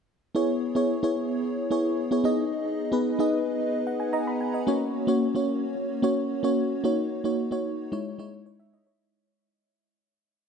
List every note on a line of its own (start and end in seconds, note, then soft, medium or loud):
0.35 0.63 B3 medium
0.35 0.63 E4 medium
0.35 0.63 G#4 medium
0.35 0.63 C#5 medium
0.75 0.94 B3 medium
0.75 0.94 E4 medium
0.75 0.94 G#4 medium
0.75 0.94 C#5 medium
1.03 1.49 B3 medium
1.03 1.49 E4 medium
1.03 1.49 G#4 medium
1.03 1.49 C#5 medium
1.71 1.98 B3 medium
1.71 1.98 E4 medium
1.71 1.98 G#4 medium
1.71 1.99 C#5 medium
2.11 2.23 B3 medium
2.11 2.25 E4 medium
2.11 2.24 G#4 medium
2.11 2.25 C#5 medium
2.24 2.78 B3 medium
2.24 2.78 D#4 medium
2.24 2.79 G#4 medium
2.24 2.79 D#5 medium
2.92 3.10 B3 medium
2.92 3.10 D#4 medium
2.92 3.11 G#4 medium
2.92 3.11 B4 medium
3.19 3.65 B3 medium
3.19 3.65 D#4 medium
3.19 3.65 G#4 medium
3.19 3.66 D#5 medium
3.87 4.00 F#5 medium
4.00 4.13 G#5 medium
4.13 4.39 D#5 medium
4.13 4.26 A#5 medium
4.27 4.40 B5 medium
4.40 4.66 G#5 medium
4.54 4.80 D#5 medium
4.67 4.95 A#3 medium
4.67 4.95 C#4 medium
4.67 4.95 F#4 medium
4.67 4.95 C#5 medium
5.07 5.26 A#3 medium
5.07 5.26 C#4 medium
5.07 5.27 F#4 medium
5.07 5.27 C#5 medium
5.35 5.81 A#3 medium
5.35 5.81 C#4 medium
5.35 5.81 F#4 medium
5.35 5.82 C#5 medium
6.02 6.30 A#3 medium
6.02 6.30 C#4 medium
6.02 6.31 F#4 medium
6.02 6.31 C#5 medium
6.43 6.71 A#3 medium
6.43 6.71 C#4 medium
6.43 6.71 F#4 medium
6.43 6.71 C#5 medium
6.84 7.11 A#3 medium
6.84 7.12 D#4 medium
6.84 7.12 F#4 medium
6.84 7.12 C#5 medium
7.24 7.43 A#3 medium
7.24 7.43 D#4 medium
7.24 7.43 F#4 medium
7.24 7.43 C#5 medium
7.51 7.92 A#3 medium
7.51 7.91 D#4 medium
7.51 7.92 F#4 medium
7.51 7.92 C#5 medium
7.92 8.14 G#3 medium
7.92 8.14 D#4 medium
7.92 8.14 E4 medium
7.92 8.14 C#5 medium
8.18 8.46 G#3 medium
8.18 8.47 D#4 medium
8.18 8.47 E4 medium
8.18 8.45 C#5 medium
8.46 8.59 C#5 medium
8.60 8.72 E5 medium
8.74 8.86 D#5 medium
8.87 9.12 C#5 medium